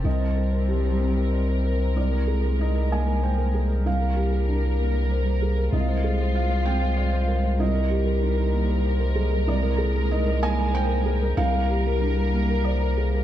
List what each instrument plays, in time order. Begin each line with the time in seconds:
0.04 felt piano C2 D#5, sub bass C2, cello G3, ambient pad C4 G4 A#4, violin section A#4
0.21 felt piano C5
0.37 felt piano A#4
0.53 felt piano C5
0.69 felt piano G4
0.85 felt piano C5
1.00 felt piano C4
1.16 felt piano C5
1.32 felt piano D5
1.48 felt piano C5
1.64 felt piano A#4
1.79 felt piano C5
1.96 felt piano C2 D5, cello G#3, ambient pad A#3 G#4
2.12 felt piano A#4
2.28 felt piano G#4
2.43 felt piano A#4
2.59 felt piano D#4 D#5
2.75 felt piano A#4
2.91 felt piano A#3 G#5
3.07 felt piano A#4
3.23 felt piano C5 G5
3.38 felt piano A#4
3.55 felt piano G#4
3.69 felt piano A#4
3.85 felt piano C2 F5, ambient pad G3 G4, cello G3, violin section A#4
4.01 felt piano A#4
4.16 felt piano G4
4.32 felt piano A#4
4.48 felt piano D4
4.65 felt piano A#4
4.79 felt piano A#3
4.95 felt piano A#4
5.11 felt piano C5
5.26 felt piano A#4
5.42 felt piano G#4
5.57 felt piano A#4
5.72 sub bass C2, felt piano C2 D#5, ambient pad G#3 F4 C5, cello G#3, violin section F4
5.88 felt piano C5
6.04 felt piano G#4
6.19 felt piano C5
6.35 felt piano F4 F5
6.50 felt piano C5
6.65 felt piano C4 G5
6.81 felt piano C5
6.97 felt piano D5 F5
7.13 felt piano C5
7.28 felt piano A#4
7.43 felt piano C5
7.59 felt piano C2 D#5, cello G3, ambient pad A#3 G4, violin section A#4
7.75 felt piano A#4
7.90 felt piano G4
8.06 felt piano A#4
8.23 felt piano D#4
8.38 felt piano A#4
8.53 felt piano A#3
8.69 felt piano A#4
8.85 felt piano C5
9.00 felt piano A#4
9.16 felt piano G#4
9.31 felt piano A#4
9.47 felt piano C2 D5, cello G#3, ambient pad G#4 A#4
9.63 felt piano A#4
9.78 felt piano G#4
9.95 felt piano A#4
10.11 felt piano D#4 D#5
10.26 felt piano A#4
10.42 felt piano A#3 G#5
10.58 felt piano A#4
10.73 felt piano C5 G5
10.89 felt piano A#4
11.06 felt piano G#4
11.22 felt piano A#4
11.37 sub bass C2, felt piano C2 F5, ambient pad G3 G4, cello G3, violin section A#4
11.54 felt piano A#4
11.70 felt piano G4
11.87 felt piano A#4
12.02 felt piano D4
12.17 felt piano A#4
12.33 felt piano A#3
12.50 felt piano A#4
12.64 felt piano C5 D5
12.82 felt piano A#4
12.97 felt piano G#4
13.14 felt piano A#4